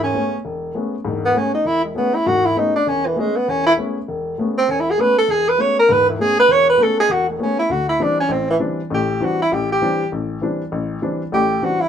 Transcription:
0.03 tenor saxophone C#4
0.14 grand piano G#3 A3 B3 C#4
0.45 grand piano E1
0.75 grand piano G#3 A3 B3 C#4
1.05 grand piano E1 G#2
1.25 tenor saxophone B3
1.35 grand piano G#3 A3 B3 C#4, tenor saxophone C#4
1.54 tenor saxophone D#4
1.65 grand piano E1, tenor saxophone E4
1.85 tenor saxophone G#3
1.95 grand piano G#3 A3 B3 C#4, tenor saxophone B3
2.15 tenor saxophone E4
2.26 grand piano E1 G#2, tenor saxophone F#4
2.45 tenor saxophone E4
2.56 grand piano G#3 A3 B3 C#4, tenor saxophone D#4
2.76 tenor saxophone D4
2.87 grand piano E1, tenor saxophone C#4
3.06 tenor saxophone E3
3.16 grand piano G#3 A3 B3 C#4, tenor saxophone G#3
3.37 tenor saxophone B3
3.48 grand piano E1, tenor saxophone C#4
3.66 tenor saxophone E4
3.77 grand piano G#3 A3 B3 C#4
4.08 grand piano E1
4.38 grand piano G#3 A3 B3 C#4
4.58 tenor saxophone C4
4.68 grand piano E1, tenor saxophone C#4
4.80 tenor saxophone E4
4.91 tenor saxophone G#4
4.98 grand piano G#3 A3 B3 C#4, tenor saxophone B4
5.18 tenor saxophone A4
5.28 grand piano E1, tenor saxophone G#4
5.49 tenor saxophone B4
5.58 grand piano G#3 A3 B3 C#4, tenor saxophone C#5
5.79 tenor saxophone A#4
5.89 grand piano E1 G#2, tenor saxophone B4
6.10 tenor saxophone E4
6.19 grand piano G#3 A3 B3 C#4, tenor saxophone G#4
6.39 tenor saxophone B4
6.48 grand piano E1, tenor saxophone C#5
6.70 tenor saxophone B4
6.78 grand piano G#3 A3 B3 C#4
6.82 tenor saxophone A4
7.00 tenor saxophone G#4
7.09 grand piano E1, tenor saxophone F#4
7.30 tenor saxophone A3
7.39 grand piano G#3 A3 B3 C#4, tenor saxophone C#4
7.59 tenor saxophone E4
7.69 grand piano D2, tenor saxophone F#4
7.89 tenor saxophone E4
8.00 grand piano E3 G3 C4 D4, tenor saxophone D4
8.20 tenor saxophone C#4
8.29 grand piano A1, tenor saxophone C4
8.50 tenor saxophone E3
8.59 grand piano E3 G3 C4 D4
8.90 grand piano A1 A2, tenor saxophone G4
9.20 grand piano E3 G3 C4 D4, tenor saxophone F#4
9.42 tenor saxophone E4
9.52 grand piano A1, tenor saxophone G4
9.72 tenor saxophone G4
9.82 grand piano E3 G3 C4 D4
10.12 grand piano A1
10.41 grand piano E3 G3 C4 D4
10.72 grand piano A1
11.02 grand piano E3 G3 C4 D4
11.32 grand piano A1 A2, tenor saxophone G4
11.62 grand piano E3 G3 C4 D4, tenor saxophone F#4
11.81 tenor saxophone E4

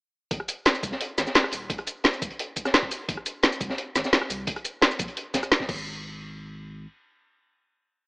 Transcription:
0.31 sub bass G#1, kick, closed hi-hat
0.40 cross-stick
0.48 closed hi-hat, shaker
0.65 snare, closed hi-hat
0.74 closed hi-hat, shaker
0.83 sub bass C2, kick, closed hi-hat, shaker
0.92 snare
1.01 closed hi-hat
1.18 sub bass G#1, snare, closed hi-hat, shaker
1.27 snare, shaker
1.35 snare, closed hi-hat
1.44 cross-stick
1.52 sub bass D#1, closed hi-hat, open hi-hat, shaker
1.70 sub bass D#1, kick, closed hi-hat
1.78 cross-stick, closed hi-hat
1.87 closed hi-hat, shaker
2.04 snare, closed hi-hat
2.13 closed hi-hat, shaker
2.22 sub bass G1, kick, closed hi-hat, shaker
2.30 closed hi-hat
2.39 closed hi-hat
2.56 kick, closed hi-hat, shaker
2.65 cross-stick, snare, shaker
2.74 snare, closed hi-hat
2.83 kick
2.91 closed hi-hat, open hi-hat, shaker
3.09 sub bass G#1, kick, closed hi-hat
3.17 cross-stick
3.26 closed hi-hat, shaker
3.43 snare, closed hi-hat
3.52 closed hi-hat, shaker
3.61 sub bass C2, kick, closed hi-hat, shaker
3.70 snare
3.78 closed hi-hat
3.96 sub bass G#1, snare, closed hi-hat, shaker
4.04 snare, shaker
4.13 snare, closed hi-hat
4.22 cross-stick
4.30 sub bass C2, closed hi-hat, open hi-hat, shaker
4.47 sub bass F#1, kick, closed hi-hat
4.56 cross-stick, closed hi-hat
4.64 closed hi-hat, shaker
4.82 snare, closed hi-hat
4.91 closed hi-hat, shaker
4.99 sub bass A#1, kick, closed hi-hat, shaker
5.08 closed hi-hat
5.17 closed hi-hat
5.34 kick, snare, closed hi-hat, shaker
5.43 cross-stick, closed hi-hat, shaker
5.52 snare, closed hi-hat
5.60 kick, snare
5.69 sub bass G#1, kick, crash

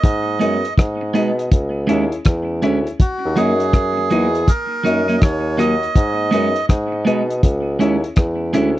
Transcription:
Already playing: melodica D#5
0.04 bassoon G#2, kick, closed hi-hat
0.39 bassoon F#2, clean electric guitar G#3 B3 D#4, upright piano D#4 G#4 B4 D#5, closed hi-hat
0.65 closed hi-hat
0.78 bassoon G#2, kick, cross-stick, closed hi-hat
1.01 muted clean electric guitar stroke
1.14 bassoon B2, clean electric guitar G#3 B3 D#4, upright piano D#4 G#4 B4 D#5, closed hi-hat
1.39 closed hi-hat
1.51 bassoon C#2, kick, closed hi-hat
1.87 bassoon D#2, clean electric guitar G#3 C#4 E4, upright piano E4 G#4 C#5 E5, closed hi-hat
2.12 closed hi-hat
2.25 bassoon E2, kick, cross-stick, closed hi-hat
2.62 bassoon D2, clean electric guitar G#3 C#4 E4, upright piano E4 G#4 C#5 E5, closed hi-hat
2.87 muted clean electric guitar stroke, closed hi-hat
3.00 melodica F#4, kick, closed hi-hat
3.25 bassoon D#2
3.36 bassoon F#2, clean electric guitar F#3 A#3 D#4, upright piano D#4 F#4 A#4 D#5, melodica G#4, closed hi-hat
3.60 closed hi-hat
3.73 bassoon F#2, kick, cross-stick, closed hi-hat
3.97 muted clean electric guitar stroke
4.10 bassoon E2, clean electric guitar F#3 A#3 D#4, upright piano D#4 F#4 A#4 D#5, closed hi-hat
4.35 closed hi-hat
4.48 melodica A#4, kick, closed hi-hat
4.84 bassoon F#2, clean electric guitar F#3 A#3 D#4, upright piano D#4 F#4 A#4 D#5, closed hi-hat
5.08 clean electric guitar F#3 A#3 D#4, closed hi-hat
5.18 melodica D#5, kick, closed hi-hat
5.22 bassoon D#2, melodica C#5, cross-stick
5.57 clean electric guitar F#3 A#3 D#4, upright piano D#4 F#4 A#4 D#5, melodica D#5, cross-stick, closed hi-hat
5.83 closed hi-hat
5.96 bassoon G#2, kick, closed hi-hat
6.31 bassoon F#2, clean electric guitar G#3 B3 D#4, upright piano D#4 G#4 B4 D#5, closed hi-hat
6.56 closed hi-hat
6.69 bassoon G#2, kick, cross-stick, closed hi-hat
6.92 muted clean electric guitar stroke
7.05 bassoon B2, clean electric guitar G#3 B3 D#4, upright piano D#4 G#4 B4 D#5, closed hi-hat
7.30 closed hi-hat
7.43 bassoon C#2, kick, closed hi-hat
7.79 bassoon D#2, clean electric guitar G#3 C#4 E4, upright piano E4 G#4 C#5 E5, closed hi-hat
8.04 closed hi-hat
8.16 bassoon E2, kick, cross-stick, closed hi-hat
8.53 bassoon D2, clean electric guitar G#3 C#4 E4, upright piano E4 G#4 C#5 E5, cross-stick, closed hi-hat

